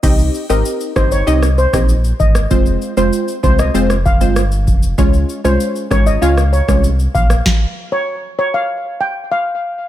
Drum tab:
CC |x---------------|----------------|----------------|----------------|
SH |xxxxxxxxxxxxxxxx|xxxxxxxxxxxxxxxx|xxxxxxxxxxxxxxxx|----------------|
SD |------r--r-r---r|-------r-r--r---|------r--r-r---r|o---------------|
BD |o-----o----o--o-|o-----o---o---o-|o-----o----o--o-|o---------------|